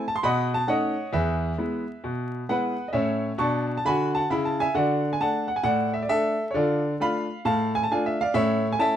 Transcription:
0.08 A5
0.16 C6
0.23 B2 D#5 F#5 B5
0.54 A5
0.67 A3 C#4 D#4 C#5 D#5 F#5
1.13 E2 G#4 B4 E5
1.58 G#3 B3 E4
2.04 B2
2.49 G#3 B3 E4 B4 F#5
2.88 D#5
2.93 A2 C#4 C#5 E5
3.38 B2 D4 A5 C#6
3.77 A5
3.85 D3 F#4 G#5 B5
4.15 F#5 A5
4.30 C#3 E4 B5
4.45 A5
4.60 E5 G#5
4.74 D3 F#4 D5 F#5
5.13 G#5
5.20 A3 D4 F#5 A5
5.48 F#5
5.56 G#5
5.63 A2 D5 F#5
5.93 E5
6.02 D5
6.09 A3 D4 A4 E5
6.51 D3 C#5
6.55 F4 A4 D5
7.00 A3 D4 F4 F5 B5
7.45 A2 F5 A5
7.75 G#5
7.83 A5
7.91 A3 D4 F4 G#5
8.06 E5
8.21 D5 F5
8.34 A2 C#4 C#5 E5
8.72 G#5
8.78 A3 C#4 E4 E5 A5

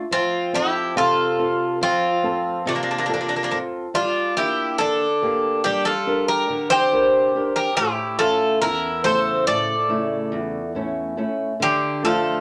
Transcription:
0.11 F3 C4 F4
0.53 C4 E4 G4 A4
0.96 C3 F4 A4
1.39 C4 F4 A4
1.81 F3 C4 F4
2.23 C4 F4 A4
2.65 C3 A3 D4
2.75 A#3 D4
2.83 A#3 D4
2.91 A#3 D4
2.98 A#3 D4
3.06 A#3 C4 D4 F4 A4
3.14 A#3 D4
3.21 A#3 D4
3.28 A#3 D4
3.36 A#3 D4
3.43 A#3 D4
3.51 A#3 C4 D4 F4 A4
3.94 G3 D4 F4
4.36 A#3 D4 E4 G4
4.78 D3 D4 A4
5.22 A#3 D4 G4
5.64 G3 D4 G4
5.85 F4 A4
6.07 D4 G4 A#4
6.28 G4 A#4
6.50 D3
6.70 G4 C5
6.92 D4 G4 A#4
7.35 D4 G4 A#4
7.56 G4 A#4
7.77 A2 E4 G4
8.19 C#4 F4 A4 E5
8.62 E2 E4 A#4
9.04 C#3 A3 E4 A4 C5
9.47 A2 A4 D5
9.89 C#3 A3 E4
10.32 E2
10.75 A3 C#4 E4
11.17 A3 C#4 E4
11.60 D3 G4
12.03 F3 A3 D4 F4 A4

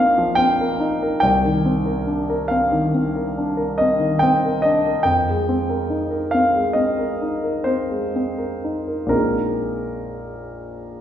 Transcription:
Already playing: A#1 F3 C4 D#4 A#4 F5 G5
0.18 F3
0.35 C4 G5
0.61 A#4
0.80 D#4
1.03 A#4
1.20 C2 G5
1.45 D#3
1.66 C4
1.85 A#4
2.07 D4
2.30 A#4
2.48 C4 F5
2.72 D#3
2.94 C4
3.16 A#4
3.38 D4
3.57 A#4
3.78 C4 D#5
4.00 D#3
4.19 C4 G5
4.45 A#4
4.62 D4 D#5
4.86 A#4
5.03 F2 G5
5.29 G#3
5.49 C4
5.69 A#4
5.90 D#4
6.11 A#4
6.31 C4 F5
6.54 G#3
6.73 C4 D#5
6.99 A#4
7.22 D#4
7.44 A#4
7.64 C4 C5
7.90 G#3
8.16 C4
8.38 A#4
8.64 D#4
8.88 A#4
9.06 A#1 G#3 C4 D#4 A#4

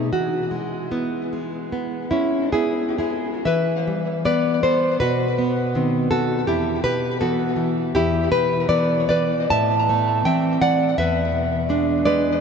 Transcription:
Already playing: B2
0.12 E3 F#4
0.51 G#3
0.91 B3 E4
1.33 G#3
1.72 B3
2.11 G#3 C#4 E4
2.52 B3 E4 G#4
2.98 G#3 E4 G#4
3.45 E3 B4 E5
3.87 G3
4.25 G3 B3 B4 D5
4.63 B3 A4 C5
5.00 B2 F#4 B4
5.38 B3
5.75 D#3 C4
6.11 D#3 F#4 A4
6.47 E2 E4 G4
6.84 B2 G4 B4
7.20 E3 B3 F#4 A4
7.56 E3
7.95 E2 E4 G4
8.31 B2 G4 B4
8.69 E3 B3 B4 D5
9.09 E3 B4 D5
9.50 A2 E5 A5
9.89 A3
10.25 E3 C4 E5 G5
10.61 E3 D5 F#5
10.98 E2 B4 E5
11.32 B2
11.69 G#3 D4
12.05 G#3 B4 D5

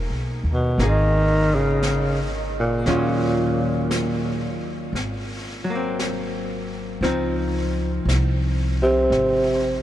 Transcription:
Already playing: A#3 D#4 G#4
0.10 B1
0.44 D#2
0.53 B2
0.78 G#1 A#3 D#4, brush sweep, snare
0.83 D#3 G#4
1.55 C#3
1.83 brush sweep, snare, hi-hat pedal
2.60 A#2
2.86 D#2 D#3 F#3 C#4 F4, brush sweep, snare
3.91 brush sweep, snare, hi-hat pedal
4.93 G#1, brush sweep, snare
5.64 F#3
5.70 A#3
5.75 C4
5.99 brush sweep, snare, hi-hat pedal
7.01 C#2 F3 C4 D#4, brush sweep, snare
8.05 C2, brush sweep, snare, hi-hat pedal
8.82 C3
9.10 G#1, brush sweep, snare

